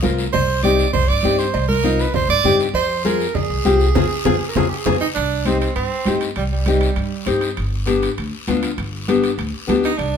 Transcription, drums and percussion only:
0.03 high conga medium
0.03 low timbale medium
0.03 short guiro medium
0.19 short guiro medium
0.33 cowbell loud
0.33 low conga medium
0.33 long guiro medium
0.63 high conga medium
0.63 short guiro medium
0.79 short guiro medium
0.93 cowbell medium
0.93 low conga medium
0.93 long guiro medium
1.23 high conga medium
1.23 short guiro medium
1.39 short guiro medium
1.54 cowbell loud
1.54 long guiro medium
1.69 high conga medium
1.84 high conga medium
1.84 short guiro medium
2.00 short guiro medium
2.14 cowbell medium
2.14 low conga medium
2.14 long guiro medium
2.44 high conga medium
2.44 low conga medium
2.44 short guiro medium
2.60 short guiro medium
2.75 cowbell loud
2.75 long guiro medium
3.05 high conga medium
3.05 short guiro medium
3.20 short guiro medium
3.35 cowbell medium
3.35 low conga medium
3.35 long guiro medium
3.65 high conga medium
3.65 short guiro medium
3.80 short guiro medium
3.95 low conga loud
3.95 high timbale medium
3.95 long guiro loud
4.25 low conga loud
4.25 high timbale medium
4.25 long guiro loud
4.56 low conga loud
4.56 high timbale medium
4.56 long guiro loud
4.86 low conga medium
4.86 high timbale loud
4.86 long guiro medium
5.15 high conga soft
5.15 high timbale medium
5.15 long guiro medium
5.45 high conga medium
5.45 high timbale medium
5.45 short guiro medium
5.62 high timbale medium
5.62 short guiro medium
5.75 high conga soft
5.75 high timbale medium
5.75 long guiro medium
6.05 high conga medium
6.05 high timbale medium
6.05 low timbale medium
6.05 short guiro medium
6.21 high timbale medium
6.21 short guiro medium
6.36 high conga soft
6.36 high timbale medium
6.36 long guiro medium
6.66 high conga medium
6.66 high timbale medium
6.66 short guiro medium
6.81 high timbale medium
6.81 short guiro medium
6.96 high conga soft
6.96 high timbale medium
6.96 long guiro medium
7.26 high conga medium
7.26 high timbale medium
7.26 short guiro medium
7.41 high timbale medium
7.41 short guiro medium
7.57 high conga soft
7.57 high timbale medium
7.57 long guiro medium
7.87 high conga medium
7.87 high timbale medium
7.87 short guiro medium
8.02 high timbale medium
8.02 short guiro medium
8.18 high conga soft
8.18 high timbale medium
8.18 long guiro medium
8.48 high conga medium
8.48 high timbale medium
8.48 low timbale medium
8.48 short guiro medium
8.63 high timbale medium
8.63 short guiro medium
8.78 high conga soft
8.78 high timbale medium
8.78 long guiro medium
9.08 high conga medium
9.08 high timbale medium
9.08 short guiro medium
9.24 high timbale medium
9.24 short guiro medium
9.38 high conga soft
9.38 high timbale medium
9.38 long guiro medium
9.69 high conga medium
9.69 high timbale medium
9.69 low timbale medium
9.69 short guiro medium
9.83 high timbale medium
9.83 short guiro medium
9.99 high conga soft
9.99 high timbale medium
9.99 long guiro medium

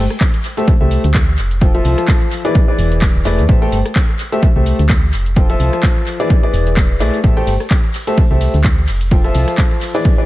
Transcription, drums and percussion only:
0.10 cross-stick medium
0.10 closed hi-hat medium
0.10 shaker soft
0.20 kick loud
0.20 clap loud
0.20 shaker soft
0.34 closed hi-hat medium
0.44 open hi-hat loud
0.44 shaker medium
0.57 closed hi-hat medium
0.57 shaker soft
0.68 kick loud
0.68 shaker soft
0.91 open hi-hat loud
0.91 shaker medium
1.04 closed hi-hat medium
1.04 shaker soft
1.14 kick loud
1.14 clap loud
1.14 shaker soft
1.38 open hi-hat loud
1.38 shaker medium
1.51 closed hi-hat medium
1.51 shaker soft
1.61 kick loud
1.61 shaker soft
1.75 closed hi-hat medium
1.85 open hi-hat loud
1.85 shaker medium
1.98 cross-stick medium
1.98 closed hi-hat medium
1.98 shaker soft
2.08 kick loud
2.08 clap loud
2.08 shaker soft
2.21 closed hi-hat medium
2.32 open hi-hat loud
2.32 shaker medium
2.45 closed hi-hat medium
2.45 shaker soft
2.55 kick loud
2.55 shaker soft
2.79 open hi-hat loud
2.79 shaker medium
2.92 closed hi-hat medium
2.92 shaker soft
3.02 kick loud
3.02 clap loud
3.02 shaker soft
3.25 open hi-hat loud
3.25 shaker medium
3.39 closed hi-hat medium
3.39 shaker soft
3.49 kick loud
3.49 shaker soft
3.62 closed hi-hat medium
3.72 open hi-hat loud
3.72 shaker medium
3.86 cross-stick medium
3.86 closed hi-hat medium
3.86 shaker soft
3.96 kick loud
3.96 clap loud
3.96 shaker soft
4.09 closed hi-hat soft
4.19 open hi-hat loud
4.19 shaker medium
4.32 closed hi-hat medium
4.32 shaker soft
4.43 kick loud
4.43 shaker soft
4.66 open hi-hat loud
4.66 shaker medium
4.79 closed hi-hat medium
4.79 shaker soft
4.89 kick loud
4.89 clap loud
4.89 shaker soft
5.13 open hi-hat loud
5.13 shaker medium
5.26 closed hi-hat medium
5.26 shaker soft
5.36 kick loud
5.36 shaker soft
5.50 closed hi-hat medium
5.60 open hi-hat loud
5.60 shaker medium
5.73 cross-stick medium
5.73 closed hi-hat medium
5.73 shaker soft
5.83 kick loud
5.83 clap loud
5.83 shaker soft
5.96 closed hi-hat soft
6.07 open hi-hat loud
6.07 shaker medium
6.20 closed hi-hat medium
6.20 shaker soft
6.30 kick loud
6.30 shaker soft
6.43 closed hi-hat soft
6.54 open hi-hat loud
6.54 shaker medium
6.67 closed hi-hat medium
6.67 shaker soft
6.77 kick loud
6.77 clap loud
6.77 shaker soft
7.01 open hi-hat loud
7.01 shaker medium
7.14 closed hi-hat medium
7.14 shaker soft
7.24 kick loud
7.24 shaker soft
7.37 closed hi-hat medium
7.47 open hi-hat loud
7.47 ride medium
7.47 shaker medium
7.60 cross-stick medium
7.60 closed hi-hat medium
7.60 shaker soft
7.70 kick loud
7.70 clap loud
7.70 shaker soft
7.84 closed hi-hat soft
7.94 open hi-hat loud
7.94 ride medium
7.94 shaker medium
8.07 closed hi-hat medium
8.07 shaker soft
8.18 kick loud
8.18 shaker soft
8.41 open hi-hat loud
8.41 ride medium
8.41 shaker medium
8.54 closed hi-hat medium
8.54 shaker soft
8.64 kick loud
8.64 clap loud
8.64 shaker soft
8.88 open hi-hat loud
8.88 ride medium
8.88 shaker medium
9.01 closed hi-hat medium
9.01 shaker soft
9.11 kick loud
9.11 shaker soft
9.24 closed hi-hat medium
9.35 open hi-hat loud
9.35 ride medium
9.35 shaker medium
9.48 cross-stick medium
9.48 closed hi-hat medium
9.48 shaker soft
9.58 kick loud
9.58 clap loud
9.58 shaker soft
9.71 closed hi-hat medium
9.81 open hi-hat loud
9.81 ride medium
9.81 shaker medium
9.95 closed hi-hat medium
9.95 shaker soft
10.05 kick loud
10.05 shaker soft

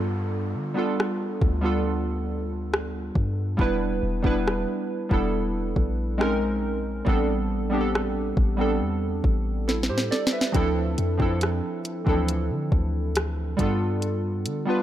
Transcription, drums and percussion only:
1.00 cross-stick loud
1.41 kick loud
2.74 cross-stick loud
3.15 kick medium
3.59 kick loud
4.24 kick medium
4.48 cross-stick loud
5.11 kick medium
5.76 kick medium
6.21 cross-stick loud
7.07 kick loud
7.95 cross-stick loud
8.37 kick loud
9.24 kick medium
9.69 snare medium
9.83 snare medium
9.98 snare medium
10.12 snare medium
10.27 snare medium
10.41 snare medium
10.54 kick loud
10.54 closed hi-hat medium
10.98 closed hi-hat medium
11.20 kick medium
11.41 cross-stick loud
11.41 closed hi-hat medium
11.85 closed hi-hat medium
12.07 kick medium
12.28 closed hi-hat medium
12.72 kick medium
13.15 cross-stick loud
13.15 closed hi-hat medium
13.59 kick loud
13.59 closed hi-hat medium
14.02 closed hi-hat medium
14.46 closed hi-hat medium

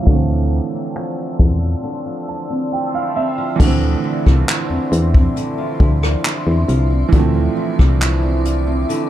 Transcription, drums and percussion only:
0.07 kick loud
0.07 closed hi-hat medium
0.50 closed hi-hat medium
0.95 finger snap loud
0.95 closed hi-hat medium
1.39 kick loud
1.39 closed hi-hat medium
3.60 kick loud
3.60 crash medium
4.26 kick medium
4.26 cross-stick medium
4.49 clap loud
4.49 closed hi-hat medium
4.92 closed hi-hat medium
5.14 kick loud
5.37 closed hi-hat medium
5.80 kick medium
6.03 cross-stick medium
6.25 clap loud
6.69 closed hi-hat medium
7.13 kick loud
7.13 closed hi-hat medium
7.79 kick medium
7.79 cross-stick medium
8.01 clap loud
8.01 closed hi-hat medium
8.45 closed hi-hat medium
8.90 closed hi-hat medium

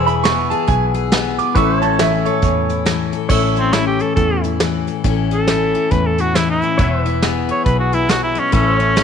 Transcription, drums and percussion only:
0.08 closed hi-hat medium
0.25 snare loud
0.25 closed hi-hat medium
0.51 closed hi-hat medium
0.68 kick loud
0.68 closed hi-hat medium
0.95 closed hi-hat medium
1.12 snare loud
1.12 closed hi-hat medium
1.39 closed hi-hat medium
1.55 kick loud
1.55 closed hi-hat medium
1.82 closed hi-hat medium
1.99 snare loud
1.99 closed hi-hat medium
2.25 closed hi-hat medium
2.42 kick loud
2.42 closed hi-hat medium
2.69 closed hi-hat medium
2.86 snare loud
2.86 closed hi-hat medium
3.12 closed hi-hat medium
3.30 kick loud
3.30 crash medium
3.56 closed hi-hat medium
3.73 snare loud
3.73 closed hi-hat medium
3.99 closed hi-hat medium
4.17 kick loud
4.17 closed hi-hat medium
4.44 closed hi-hat medium
4.60 snare loud
4.60 closed hi-hat medium
4.87 closed hi-hat medium
5.04 kick loud
5.04 closed hi-hat medium
5.31 closed hi-hat medium
5.47 snare loud
5.47 closed hi-hat medium
5.74 closed hi-hat medium
5.91 kick loud
5.91 closed hi-hat medium
6.18 closed hi-hat medium
6.35 snare loud
6.35 closed hi-hat medium
6.62 closed hi-hat medium
6.79 kick loud
6.79 closed hi-hat medium
7.06 closed hi-hat medium
7.22 snare loud
7.22 closed hi-hat medium
7.49 closed hi-hat medium
7.66 kick loud
7.66 closed hi-hat medium
7.93 closed hi-hat medium
8.09 snare loud
8.09 closed hi-hat medium
8.36 closed hi-hat medium
8.53 kick loud
8.53 closed hi-hat medium
8.80 closed hi-hat medium
8.97 snare loud
8.97 closed hi-hat medium

